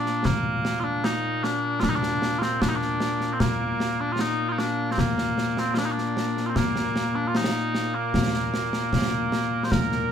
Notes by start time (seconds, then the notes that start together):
Already playing: A#2 A#3 D4
0.06 snare
0.25 A#3, concert bass drum, snare
0.65 snare
0.80 D4 F4
1.04 D#4, snare
1.44 D4, snare
1.80 D4 F4, concert bass drum, snare
1.90 D#4
1.95 D4
2.03 snare
2.22 snare
2.39 C4 F4, snare
2.61 D4, concert bass drum, snare
2.69 D#4
2.76 D4
2.82 snare
3.00 snare
3.21 snare
3.33 C4
3.40 A#3, concert bass drum, snare
3.80 snare
4.00 D4
4.12 F4
4.19 D#4, snare
4.49 D#4 F4
4.59 D4, snare
4.91 C4
4.98 A#3, concert bass drum, snare
5.18 snare
5.38 snare
5.57 C4, snare
5.74 F4, snare
5.78 D4
5.85 D#4
5.92 D4
5.98 snare
6.17 snare
6.37 snare
6.46 C4 F4
6.56 A#3, concert bass drum, snare
6.76 snare
6.96 snare
7.15 D4
7.28 F4
7.35 D#4, snare
7.75 snare
7.95 A#3
8.14 concert bass drum, snare
8.34 snare
8.54 snare
8.73 snare
8.93 concert bass drum, snare
9.32 snare
9.64 C5
9.71 A#4, concert bass drum, snare
9.92 snare